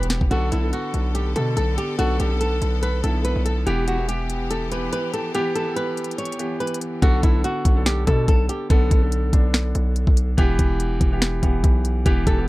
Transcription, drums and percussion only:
0.03 closed hi-hat
0.10 snare, closed hi-hat
0.21 kick
0.31 closed hi-hat
0.52 closed hi-hat
0.73 closed hi-hat
0.94 closed hi-hat
1.15 closed hi-hat
1.36 closed hi-hat
1.57 closed hi-hat
1.78 closed hi-hat
1.99 closed hi-hat
2.20 closed hi-hat
2.41 closed hi-hat
2.62 closed hi-hat
2.83 closed hi-hat
3.04 closed hi-hat
3.25 closed hi-hat
3.46 closed hi-hat
3.67 closed hi-hat
3.88 closed hi-hat
4.09 closed hi-hat
4.30 closed hi-hat
4.51 closed hi-hat
4.72 closed hi-hat
4.93 closed hi-hat
5.14 closed hi-hat
5.35 closed hi-hat
5.56 closed hi-hat
5.76 closed hi-hat
5.97 closed hi-hat
6.04 closed hi-hat
6.11 closed hi-hat
6.18 closed hi-hat
6.25 closed hi-hat
6.32 closed hi-hat
6.39 closed hi-hat
6.60 closed hi-hat
6.67 closed hi-hat
6.74 closed hi-hat
6.81 closed hi-hat
7.02 kick, closed hi-hat
7.23 kick, closed hi-hat
7.44 closed hi-hat
7.65 kick, closed hi-hat
7.86 finger snap, snare, closed hi-hat
8.07 kick, closed hi-hat
8.28 kick, closed hi-hat
8.49 closed hi-hat
8.70 kick, closed hi-hat
8.91 kick, closed hi-hat
9.12 closed hi-hat
9.33 kick, closed hi-hat
9.54 finger snap, snare, closed hi-hat
9.75 closed hi-hat
9.96 closed hi-hat
10.07 kick
10.17 closed hi-hat
10.38 kick, closed hi-hat
10.59 kick, closed hi-hat
10.80 closed hi-hat
11.01 kick, closed hi-hat
11.22 finger snap, snare, closed hi-hat
11.43 kick, closed hi-hat
11.64 kick, closed hi-hat
11.85 closed hi-hat
12.06 kick, closed hi-hat
12.27 kick, closed hi-hat

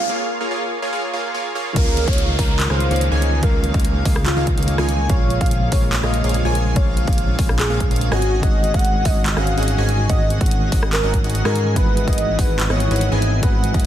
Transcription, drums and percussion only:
1.76 kick, closed hi-hat, crash
1.97 closed hi-hat
2.08 kick, closed hi-hat
2.13 closed hi-hat
2.18 closed hi-hat
2.39 kick, open hi-hat
2.60 clap, closed hi-hat
2.70 cross-stick
2.80 closed hi-hat
2.91 closed hi-hat
2.96 closed hi-hat
3.01 closed hi-hat
3.22 closed hi-hat
3.43 kick, closed hi-hat
3.64 closed hi-hat
3.74 kick, closed hi-hat
3.80 closed hi-hat
3.85 closed hi-hat
4.05 kick, open hi-hat
4.16 cross-stick
4.26 clap, closed hi-hat
4.47 kick, closed hi-hat
4.58 closed hi-hat
4.63 closed hi-hat
4.68 closed hi-hat
4.78 cross-stick
4.89 closed hi-hat
5.09 kick, closed hi-hat
5.30 closed hi-hat
5.41 kick, closed hi-hat
5.46 closed hi-hat
5.51 closed hi-hat
5.72 kick, open hi-hat
5.93 clap, closed hi-hat
6.03 cross-stick
6.14 closed hi-hat
6.24 closed hi-hat
6.29 closed hi-hat
6.34 closed hi-hat
6.55 closed hi-hat
6.76 kick, closed hi-hat
6.97 closed hi-hat
7.08 kick, closed hi-hat
7.13 closed hi-hat
7.18 closed hi-hat
7.39 kick, open hi-hat
7.49 cross-stick
7.59 clap, closed hi-hat
7.80 kick, closed hi-hat
7.91 closed hi-hat
7.96 closed hi-hat
8.01 closed hi-hat
8.12 cross-stick
8.22 closed hi-hat
8.43 kick, closed hi-hat
8.64 closed hi-hat
8.74 kick, closed hi-hat
8.79 closed hi-hat
8.85 closed hi-hat
9.05 kick, open hi-hat
9.26 clap, closed hi-hat
9.37 cross-stick
9.47 closed hi-hat
9.58 closed hi-hat
9.63 closed hi-hat
9.68 closed hi-hat
9.89 closed hi-hat
10.09 kick, closed hi-hat
10.30 closed hi-hat
10.41 kick, closed hi-hat
10.46 closed hi-hat
10.51 closed hi-hat
10.72 kick, open hi-hat
10.83 cross-stick
10.93 clap, closed hi-hat
11.14 kick, closed hi-hat
11.24 closed hi-hat
11.30 closed hi-hat
11.35 closed hi-hat
11.45 cross-stick
11.56 closed hi-hat
11.76 kick, closed hi-hat
11.97 closed hi-hat
12.08 kick, closed hi-hat
12.13 closed hi-hat
12.18 closed hi-hat
12.39 kick, open hi-hat
12.60 clap, closed hi-hat
12.70 cross-stick
12.80 closed hi-hat
12.91 closed hi-hat
12.96 closed hi-hat
13.01 closed hi-hat
13.22 closed hi-hat
13.43 kick, closed hi-hat
13.64 closed hi-hat
13.74 kick, closed hi-hat
13.80 closed hi-hat

